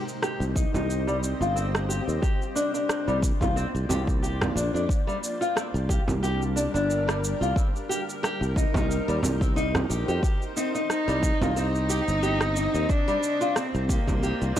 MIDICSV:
0, 0, Header, 1, 7, 480
1, 0, Start_track
1, 0, Key_signature, -3, "minor"
1, 0, Tempo, 666667
1, 1604, Time_signature, 4, 2, 24, 8
1, 10508, End_track
2, 0, Start_track
2, 0, Title_t, "Ambient pad"
2, 0, Program_c, 0, 92
2, 0, Note_on_c, 0, 60, 76
2, 0, Note_on_c, 0, 67, 73
2, 0, Note_on_c, 0, 72, 70
2, 0, Note_on_c, 0, 75, 82
2, 1582, Note_off_c, 0, 60, 0
2, 1582, Note_off_c, 0, 67, 0
2, 1583, Note_off_c, 0, 75, 0
2, 1599, Note_on_c, 0, 65, 70
2, 1601, Note_on_c, 0, 74, 86
2, 1604, Note_on_c, 0, 58, 77
2, 3492, Note_off_c, 0, 72, 0
2, 3503, Note_off_c, 0, 65, 0
2, 3504, Note_off_c, 0, 74, 0
2, 3505, Note_off_c, 0, 58, 0
2, 3518, Note_on_c, 0, 70, 91
2, 3521, Note_on_c, 0, 67, 68
2, 3522, Note_on_c, 0, 55, 79
2, 3522, Note_on_c, 0, 62, 71
2, 5423, Note_off_c, 0, 67, 0
2, 5424, Note_off_c, 0, 55, 0
2, 5424, Note_off_c, 0, 62, 0
2, 5442, Note_on_c, 0, 63, 75
2, 5442, Note_on_c, 0, 72, 88
2, 7332, Note_off_c, 0, 70, 0
2, 7344, Note_off_c, 0, 63, 0
2, 7362, Note_on_c, 0, 67, 70
2, 7363, Note_on_c, 0, 60, 79
2, 7366, Note_on_c, 0, 75, 82
2, 9254, Note_off_c, 0, 72, 0
2, 9264, Note_off_c, 0, 60, 0
2, 9264, Note_off_c, 0, 67, 0
2, 9266, Note_off_c, 0, 75, 0
2, 9287, Note_on_c, 0, 58, 81
2, 9288, Note_on_c, 0, 74, 90
2, 9290, Note_on_c, 0, 65, 72
2, 9291, Note_on_c, 0, 72, 69
2, 10508, Note_off_c, 0, 58, 0
2, 10508, Note_off_c, 0, 65, 0
2, 10508, Note_off_c, 0, 72, 0
2, 10508, Note_off_c, 0, 74, 0
2, 10508, End_track
3, 0, Start_track
3, 0, Title_t, "Nylon-string guitar"
3, 0, Program_c, 1, 24
3, 161, Note_on_c, 1, 67, 78
3, 288, Note_off_c, 1, 67, 0
3, 400, Note_on_c, 1, 63, 66
3, 525, Note_off_c, 1, 63, 0
3, 534, Note_on_c, 1, 63, 66
3, 762, Note_off_c, 1, 63, 0
3, 772, Note_on_c, 1, 55, 93
3, 836, Note_off_c, 1, 55, 0
3, 1014, Note_on_c, 1, 65, 70
3, 1118, Note_off_c, 1, 65, 0
3, 1120, Note_on_c, 1, 60, 74
3, 1197, Note_off_c, 1, 60, 0
3, 1360, Note_on_c, 1, 67, 64
3, 1437, Note_off_c, 1, 67, 0
3, 1598, Note_on_c, 1, 67, 67
3, 1726, Note_off_c, 1, 67, 0
3, 1840, Note_on_c, 1, 62, 72
3, 1965, Note_off_c, 1, 62, 0
3, 1974, Note_on_c, 1, 62, 74
3, 2202, Note_off_c, 1, 62, 0
3, 2215, Note_on_c, 1, 55, 93
3, 2277, Note_off_c, 1, 55, 0
3, 2453, Note_on_c, 1, 65, 72
3, 2557, Note_off_c, 1, 65, 0
3, 2564, Note_on_c, 1, 60, 78
3, 2639, Note_off_c, 1, 60, 0
3, 2801, Note_on_c, 1, 67, 70
3, 2878, Note_off_c, 1, 67, 0
3, 3041, Note_on_c, 1, 67, 73
3, 3168, Note_off_c, 1, 67, 0
3, 3284, Note_on_c, 1, 62, 69
3, 3407, Note_off_c, 1, 62, 0
3, 3415, Note_on_c, 1, 62, 70
3, 3524, Note_off_c, 1, 62, 0
3, 3652, Note_on_c, 1, 55, 93
3, 3716, Note_off_c, 1, 55, 0
3, 3894, Note_on_c, 1, 65, 74
3, 3998, Note_off_c, 1, 65, 0
3, 4000, Note_on_c, 1, 60, 75
3, 4077, Note_off_c, 1, 60, 0
3, 4242, Note_on_c, 1, 67, 65
3, 4318, Note_off_c, 1, 67, 0
3, 4483, Note_on_c, 1, 67, 73
3, 4609, Note_off_c, 1, 67, 0
3, 4722, Note_on_c, 1, 62, 75
3, 4844, Note_off_c, 1, 62, 0
3, 4853, Note_on_c, 1, 62, 70
3, 5081, Note_off_c, 1, 62, 0
3, 5094, Note_on_c, 1, 55, 87
3, 5157, Note_off_c, 1, 55, 0
3, 5337, Note_on_c, 1, 65, 72
3, 5439, Note_off_c, 1, 65, 0
3, 5442, Note_on_c, 1, 60, 69
3, 5518, Note_off_c, 1, 60, 0
3, 5683, Note_on_c, 1, 67, 70
3, 5759, Note_off_c, 1, 67, 0
3, 5925, Note_on_c, 1, 67, 79
3, 6050, Note_off_c, 1, 67, 0
3, 6167, Note_on_c, 1, 63, 70
3, 6291, Note_off_c, 1, 63, 0
3, 6299, Note_on_c, 1, 63, 69
3, 6524, Note_off_c, 1, 63, 0
3, 6538, Note_on_c, 1, 55, 91
3, 6599, Note_off_c, 1, 55, 0
3, 6779, Note_on_c, 1, 60, 69
3, 6875, Note_off_c, 1, 60, 0
3, 6884, Note_on_c, 1, 63, 93
3, 7009, Note_off_c, 1, 63, 0
3, 7124, Note_on_c, 1, 67, 70
3, 7243, Note_off_c, 1, 67, 0
3, 7259, Note_on_c, 1, 67, 71
3, 7355, Note_off_c, 1, 67, 0
3, 7364, Note_on_c, 1, 67, 71
3, 7489, Note_off_c, 1, 67, 0
3, 7607, Note_on_c, 1, 63, 72
3, 7728, Note_off_c, 1, 63, 0
3, 7737, Note_on_c, 1, 63, 69
3, 7963, Note_off_c, 1, 63, 0
3, 7976, Note_on_c, 1, 55, 90
3, 8038, Note_off_c, 1, 55, 0
3, 8219, Note_on_c, 1, 65, 73
3, 8320, Note_off_c, 1, 65, 0
3, 8325, Note_on_c, 1, 60, 79
3, 8400, Note_off_c, 1, 60, 0
3, 8564, Note_on_c, 1, 67, 73
3, 8639, Note_off_c, 1, 67, 0
3, 8804, Note_on_c, 1, 67, 74
3, 8929, Note_off_c, 1, 67, 0
3, 9044, Note_on_c, 1, 63, 70
3, 9167, Note_off_c, 1, 63, 0
3, 9176, Note_on_c, 1, 63, 70
3, 9284, Note_off_c, 1, 63, 0
3, 9415, Note_on_c, 1, 55, 98
3, 9477, Note_off_c, 1, 55, 0
3, 9654, Note_on_c, 1, 65, 73
3, 9758, Note_off_c, 1, 65, 0
3, 9765, Note_on_c, 1, 60, 84
3, 9840, Note_off_c, 1, 60, 0
3, 10006, Note_on_c, 1, 67, 68
3, 10080, Note_off_c, 1, 67, 0
3, 10246, Note_on_c, 1, 67, 81
3, 10370, Note_off_c, 1, 67, 0
3, 10484, Note_on_c, 1, 62, 77
3, 10508, Note_off_c, 1, 62, 0
3, 10508, End_track
4, 0, Start_track
4, 0, Title_t, "Cello"
4, 0, Program_c, 2, 42
4, 7606, Note_on_c, 2, 60, 86
4, 7714, Note_off_c, 2, 60, 0
4, 7849, Note_on_c, 2, 63, 104
4, 8298, Note_off_c, 2, 63, 0
4, 8323, Note_on_c, 2, 63, 114
4, 9284, Note_on_c, 2, 62, 105
4, 9295, Note_off_c, 2, 63, 0
4, 9765, Note_on_c, 2, 60, 95
4, 9776, Note_off_c, 2, 62, 0
4, 10004, Note_on_c, 2, 58, 87
4, 10014, Note_off_c, 2, 60, 0
4, 10508, Note_off_c, 2, 58, 0
4, 10508, End_track
5, 0, Start_track
5, 0, Title_t, "Fretless electric bass"
5, 0, Program_c, 3, 35
5, 290, Note_on_c, 3, 36, 88
5, 460, Note_off_c, 3, 36, 0
5, 534, Note_on_c, 3, 36, 80
5, 957, Note_off_c, 3, 36, 0
5, 1013, Note_on_c, 3, 31, 91
5, 1436, Note_off_c, 3, 31, 0
5, 1495, Note_on_c, 3, 39, 78
5, 1574, Note_off_c, 3, 39, 0
5, 2216, Note_on_c, 3, 36, 86
5, 2383, Note_off_c, 3, 36, 0
5, 2454, Note_on_c, 3, 36, 84
5, 2622, Note_off_c, 3, 36, 0
5, 2697, Note_on_c, 3, 36, 87
5, 2775, Note_off_c, 3, 36, 0
5, 2804, Note_on_c, 3, 36, 87
5, 3236, Note_off_c, 3, 36, 0
5, 3280, Note_on_c, 3, 34, 97
5, 3377, Note_off_c, 3, 34, 0
5, 3414, Note_on_c, 3, 41, 83
5, 3493, Note_off_c, 3, 41, 0
5, 4134, Note_on_c, 3, 36, 89
5, 4302, Note_off_c, 3, 36, 0
5, 4376, Note_on_c, 3, 36, 81
5, 4798, Note_off_c, 3, 36, 0
5, 4856, Note_on_c, 3, 31, 90
5, 5278, Note_off_c, 3, 31, 0
5, 5335, Note_on_c, 3, 36, 81
5, 5414, Note_off_c, 3, 36, 0
5, 6055, Note_on_c, 3, 36, 87
5, 6223, Note_off_c, 3, 36, 0
5, 6299, Note_on_c, 3, 36, 83
5, 6464, Note_off_c, 3, 36, 0
5, 6540, Note_on_c, 3, 39, 91
5, 6617, Note_off_c, 3, 39, 0
5, 6649, Note_on_c, 3, 36, 85
5, 7079, Note_off_c, 3, 36, 0
5, 7130, Note_on_c, 3, 34, 89
5, 7222, Note_off_c, 3, 34, 0
5, 7260, Note_on_c, 3, 41, 87
5, 7336, Note_off_c, 3, 41, 0
5, 7977, Note_on_c, 3, 36, 84
5, 8143, Note_off_c, 3, 36, 0
5, 8218, Note_on_c, 3, 36, 84
5, 8639, Note_off_c, 3, 36, 0
5, 8699, Note_on_c, 3, 31, 88
5, 9119, Note_off_c, 3, 31, 0
5, 9175, Note_on_c, 3, 39, 85
5, 9254, Note_off_c, 3, 39, 0
5, 9897, Note_on_c, 3, 36, 99
5, 10063, Note_off_c, 3, 36, 0
5, 10135, Note_on_c, 3, 36, 88
5, 10302, Note_off_c, 3, 36, 0
5, 10380, Note_on_c, 3, 36, 94
5, 10456, Note_off_c, 3, 36, 0
5, 10508, End_track
6, 0, Start_track
6, 0, Title_t, "Frame drum"
6, 536, Note_on_c, 9, 64, 83
6, 608, Note_off_c, 9, 64, 0
6, 2464, Note_on_c, 9, 64, 88
6, 2536, Note_off_c, 9, 64, 0
6, 2807, Note_on_c, 9, 64, 85
6, 2879, Note_off_c, 9, 64, 0
6, 3179, Note_on_c, 9, 64, 96
6, 3251, Note_off_c, 9, 64, 0
6, 4375, Note_on_c, 9, 64, 93
6, 4447, Note_off_c, 9, 64, 0
6, 6294, Note_on_c, 9, 64, 107
6, 6366, Note_off_c, 9, 64, 0
6, 6644, Note_on_c, 9, 64, 85
6, 6716, Note_off_c, 9, 64, 0
6, 7019, Note_on_c, 9, 64, 98
6, 7091, Note_off_c, 9, 64, 0
6, 8219, Note_on_c, 9, 64, 98
6, 8291, Note_off_c, 9, 64, 0
6, 10139, Note_on_c, 9, 64, 84
6, 10211, Note_off_c, 9, 64, 0
6, 10508, End_track
7, 0, Start_track
7, 0, Title_t, "Drums"
7, 61, Note_on_c, 9, 69, 31
7, 133, Note_off_c, 9, 69, 0
7, 163, Note_on_c, 9, 37, 73
7, 167, Note_on_c, 9, 69, 38
7, 235, Note_off_c, 9, 37, 0
7, 239, Note_off_c, 9, 69, 0
7, 299, Note_on_c, 9, 69, 22
7, 371, Note_off_c, 9, 69, 0
7, 401, Note_on_c, 9, 36, 94
7, 407, Note_on_c, 9, 69, 73
7, 473, Note_off_c, 9, 36, 0
7, 479, Note_off_c, 9, 69, 0
7, 540, Note_on_c, 9, 69, 31
7, 612, Note_off_c, 9, 69, 0
7, 650, Note_on_c, 9, 69, 39
7, 722, Note_off_c, 9, 69, 0
7, 780, Note_on_c, 9, 69, 19
7, 852, Note_off_c, 9, 69, 0
7, 889, Note_on_c, 9, 69, 70
7, 961, Note_off_c, 9, 69, 0
7, 1023, Note_on_c, 9, 69, 32
7, 1095, Note_off_c, 9, 69, 0
7, 1130, Note_on_c, 9, 69, 39
7, 1202, Note_off_c, 9, 69, 0
7, 1258, Note_on_c, 9, 37, 72
7, 1263, Note_on_c, 9, 69, 21
7, 1330, Note_off_c, 9, 37, 0
7, 1335, Note_off_c, 9, 69, 0
7, 1370, Note_on_c, 9, 69, 72
7, 1442, Note_off_c, 9, 69, 0
7, 1505, Note_on_c, 9, 69, 30
7, 1577, Note_off_c, 9, 69, 0
7, 1603, Note_on_c, 9, 36, 118
7, 1609, Note_on_c, 9, 69, 46
7, 1675, Note_off_c, 9, 36, 0
7, 1681, Note_off_c, 9, 69, 0
7, 1743, Note_on_c, 9, 69, 21
7, 1815, Note_off_c, 9, 69, 0
7, 1846, Note_on_c, 9, 69, 77
7, 1918, Note_off_c, 9, 69, 0
7, 1978, Note_on_c, 9, 69, 34
7, 2050, Note_off_c, 9, 69, 0
7, 2084, Note_on_c, 9, 37, 77
7, 2088, Note_on_c, 9, 69, 40
7, 2156, Note_off_c, 9, 37, 0
7, 2160, Note_off_c, 9, 69, 0
7, 2219, Note_on_c, 9, 69, 22
7, 2291, Note_off_c, 9, 69, 0
7, 2322, Note_on_c, 9, 36, 102
7, 2327, Note_on_c, 9, 69, 81
7, 2394, Note_off_c, 9, 36, 0
7, 2399, Note_off_c, 9, 69, 0
7, 2454, Note_on_c, 9, 36, 63
7, 2463, Note_on_c, 9, 69, 30
7, 2526, Note_off_c, 9, 36, 0
7, 2535, Note_off_c, 9, 69, 0
7, 2571, Note_on_c, 9, 69, 42
7, 2643, Note_off_c, 9, 69, 0
7, 2704, Note_on_c, 9, 69, 22
7, 2776, Note_off_c, 9, 69, 0
7, 2811, Note_on_c, 9, 69, 75
7, 2883, Note_off_c, 9, 69, 0
7, 2933, Note_on_c, 9, 36, 94
7, 2944, Note_on_c, 9, 69, 33
7, 3005, Note_off_c, 9, 36, 0
7, 3016, Note_off_c, 9, 69, 0
7, 3050, Note_on_c, 9, 69, 44
7, 3122, Note_off_c, 9, 69, 0
7, 3179, Note_on_c, 9, 37, 78
7, 3183, Note_on_c, 9, 69, 22
7, 3251, Note_off_c, 9, 37, 0
7, 3255, Note_off_c, 9, 69, 0
7, 3292, Note_on_c, 9, 69, 77
7, 3364, Note_off_c, 9, 69, 0
7, 3427, Note_on_c, 9, 69, 32
7, 3499, Note_off_c, 9, 69, 0
7, 3521, Note_on_c, 9, 36, 113
7, 3532, Note_on_c, 9, 69, 46
7, 3593, Note_off_c, 9, 36, 0
7, 3604, Note_off_c, 9, 69, 0
7, 3665, Note_on_c, 9, 69, 23
7, 3737, Note_off_c, 9, 69, 0
7, 3771, Note_on_c, 9, 69, 73
7, 3843, Note_off_c, 9, 69, 0
7, 3903, Note_on_c, 9, 69, 35
7, 3975, Note_off_c, 9, 69, 0
7, 4008, Note_on_c, 9, 37, 71
7, 4013, Note_on_c, 9, 69, 43
7, 4080, Note_off_c, 9, 37, 0
7, 4085, Note_off_c, 9, 69, 0
7, 4143, Note_on_c, 9, 69, 21
7, 4215, Note_off_c, 9, 69, 0
7, 4242, Note_on_c, 9, 36, 104
7, 4251, Note_on_c, 9, 69, 77
7, 4314, Note_off_c, 9, 36, 0
7, 4323, Note_off_c, 9, 69, 0
7, 4385, Note_on_c, 9, 69, 32
7, 4457, Note_off_c, 9, 69, 0
7, 4492, Note_on_c, 9, 69, 44
7, 4564, Note_off_c, 9, 69, 0
7, 4623, Note_on_c, 9, 69, 22
7, 4695, Note_off_c, 9, 69, 0
7, 4732, Note_on_c, 9, 69, 74
7, 4804, Note_off_c, 9, 69, 0
7, 4864, Note_on_c, 9, 69, 31
7, 4936, Note_off_c, 9, 69, 0
7, 4971, Note_on_c, 9, 69, 45
7, 5043, Note_off_c, 9, 69, 0
7, 5102, Note_on_c, 9, 37, 69
7, 5107, Note_on_c, 9, 69, 23
7, 5174, Note_off_c, 9, 37, 0
7, 5179, Note_off_c, 9, 69, 0
7, 5215, Note_on_c, 9, 69, 77
7, 5287, Note_off_c, 9, 69, 0
7, 5347, Note_on_c, 9, 69, 32
7, 5419, Note_off_c, 9, 69, 0
7, 5443, Note_on_c, 9, 36, 115
7, 5456, Note_on_c, 9, 69, 47
7, 5515, Note_off_c, 9, 36, 0
7, 5528, Note_off_c, 9, 69, 0
7, 5587, Note_on_c, 9, 69, 21
7, 5659, Note_off_c, 9, 69, 0
7, 5697, Note_on_c, 9, 69, 80
7, 5769, Note_off_c, 9, 69, 0
7, 5829, Note_on_c, 9, 69, 35
7, 5901, Note_off_c, 9, 69, 0
7, 5933, Note_on_c, 9, 37, 73
7, 5937, Note_on_c, 9, 69, 44
7, 6005, Note_off_c, 9, 37, 0
7, 6009, Note_off_c, 9, 69, 0
7, 6068, Note_on_c, 9, 69, 21
7, 6140, Note_off_c, 9, 69, 0
7, 6164, Note_on_c, 9, 36, 102
7, 6176, Note_on_c, 9, 69, 75
7, 6236, Note_off_c, 9, 36, 0
7, 6248, Note_off_c, 9, 69, 0
7, 6296, Note_on_c, 9, 36, 65
7, 6309, Note_on_c, 9, 69, 31
7, 6368, Note_off_c, 9, 36, 0
7, 6381, Note_off_c, 9, 69, 0
7, 6416, Note_on_c, 9, 69, 42
7, 6488, Note_off_c, 9, 69, 0
7, 6546, Note_on_c, 9, 69, 20
7, 6618, Note_off_c, 9, 69, 0
7, 6655, Note_on_c, 9, 69, 76
7, 6727, Note_off_c, 9, 69, 0
7, 6776, Note_on_c, 9, 36, 100
7, 6784, Note_on_c, 9, 69, 32
7, 6848, Note_off_c, 9, 36, 0
7, 6856, Note_off_c, 9, 69, 0
7, 6892, Note_on_c, 9, 69, 41
7, 6964, Note_off_c, 9, 69, 0
7, 7019, Note_on_c, 9, 37, 68
7, 7023, Note_on_c, 9, 69, 20
7, 7091, Note_off_c, 9, 37, 0
7, 7095, Note_off_c, 9, 69, 0
7, 7133, Note_on_c, 9, 69, 77
7, 7205, Note_off_c, 9, 69, 0
7, 7264, Note_on_c, 9, 69, 31
7, 7336, Note_off_c, 9, 69, 0
7, 7364, Note_on_c, 9, 36, 114
7, 7372, Note_on_c, 9, 69, 44
7, 7436, Note_off_c, 9, 36, 0
7, 7444, Note_off_c, 9, 69, 0
7, 7504, Note_on_c, 9, 69, 20
7, 7576, Note_off_c, 9, 69, 0
7, 7610, Note_on_c, 9, 69, 70
7, 7682, Note_off_c, 9, 69, 0
7, 7743, Note_on_c, 9, 69, 30
7, 7815, Note_off_c, 9, 69, 0
7, 7847, Note_on_c, 9, 37, 63
7, 7852, Note_on_c, 9, 69, 39
7, 7919, Note_off_c, 9, 37, 0
7, 7924, Note_off_c, 9, 69, 0
7, 7983, Note_on_c, 9, 69, 20
7, 8055, Note_off_c, 9, 69, 0
7, 8084, Note_on_c, 9, 36, 96
7, 8090, Note_on_c, 9, 69, 72
7, 8156, Note_off_c, 9, 36, 0
7, 8162, Note_off_c, 9, 69, 0
7, 8226, Note_on_c, 9, 69, 30
7, 8298, Note_off_c, 9, 69, 0
7, 8330, Note_on_c, 9, 69, 43
7, 8402, Note_off_c, 9, 69, 0
7, 8462, Note_on_c, 9, 69, 22
7, 8534, Note_off_c, 9, 69, 0
7, 8566, Note_on_c, 9, 69, 71
7, 8638, Note_off_c, 9, 69, 0
7, 8700, Note_on_c, 9, 69, 31
7, 8772, Note_off_c, 9, 69, 0
7, 8808, Note_on_c, 9, 69, 40
7, 8880, Note_off_c, 9, 69, 0
7, 8933, Note_on_c, 9, 37, 68
7, 8937, Note_on_c, 9, 69, 21
7, 9005, Note_off_c, 9, 37, 0
7, 9009, Note_off_c, 9, 69, 0
7, 9045, Note_on_c, 9, 69, 72
7, 9117, Note_off_c, 9, 69, 0
7, 9178, Note_on_c, 9, 69, 32
7, 9250, Note_off_c, 9, 69, 0
7, 9284, Note_on_c, 9, 36, 107
7, 9286, Note_on_c, 9, 69, 42
7, 9356, Note_off_c, 9, 36, 0
7, 9358, Note_off_c, 9, 69, 0
7, 9420, Note_on_c, 9, 69, 20
7, 9492, Note_off_c, 9, 69, 0
7, 9527, Note_on_c, 9, 69, 70
7, 9599, Note_off_c, 9, 69, 0
7, 9657, Note_on_c, 9, 69, 34
7, 9729, Note_off_c, 9, 69, 0
7, 9763, Note_on_c, 9, 37, 68
7, 9768, Note_on_c, 9, 69, 40
7, 9835, Note_off_c, 9, 37, 0
7, 9840, Note_off_c, 9, 69, 0
7, 9898, Note_on_c, 9, 69, 21
7, 9970, Note_off_c, 9, 69, 0
7, 10003, Note_on_c, 9, 36, 93
7, 10006, Note_on_c, 9, 69, 71
7, 10075, Note_off_c, 9, 36, 0
7, 10078, Note_off_c, 9, 69, 0
7, 10134, Note_on_c, 9, 36, 59
7, 10140, Note_on_c, 9, 69, 30
7, 10206, Note_off_c, 9, 36, 0
7, 10212, Note_off_c, 9, 69, 0
7, 10248, Note_on_c, 9, 69, 40
7, 10320, Note_off_c, 9, 69, 0
7, 10381, Note_on_c, 9, 69, 20
7, 10453, Note_off_c, 9, 69, 0
7, 10508, End_track
0, 0, End_of_file